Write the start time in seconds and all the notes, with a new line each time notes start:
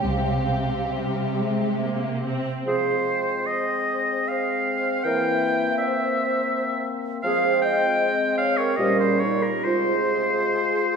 Already playing: G3 G4
0.04 C2 C3 C4 F5
0.92 G3 E5
1.38 G#3
1.83 A#3
2.25 C4
2.66 F3 G#3 C4 G#4 C5
3.47 C5 D#5
4.28 C5 F5
5.04 E3 A#3 A#4 E5 G5
5.78 C5 E5
7.23 F3 G#3 C4 G#4 C5 F5
7.62 D#5 G5
8.38 C#5 F5
8.57 A#4 C#5
8.76 A#2 G3 C#4 G4 C5 D#5
8.99 G#4 C5
9.20 D#4 A#4 C#5
9.42 G4 A#4
9.64 C3 G#3 F4 G#4 C5